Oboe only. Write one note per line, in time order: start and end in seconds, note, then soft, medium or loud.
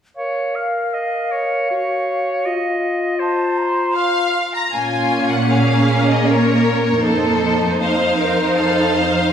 0.17 0.57 C#5 soft
0.56 0.96 F5 soft
0.94 1.33 D#5 soft
1.32 1.70 C#5 soft
1.70 2.47 C#5 soft
2.46 3.21 D#5 soft
3.20 3.95 C5 soft
3.96 4.40 F5 soft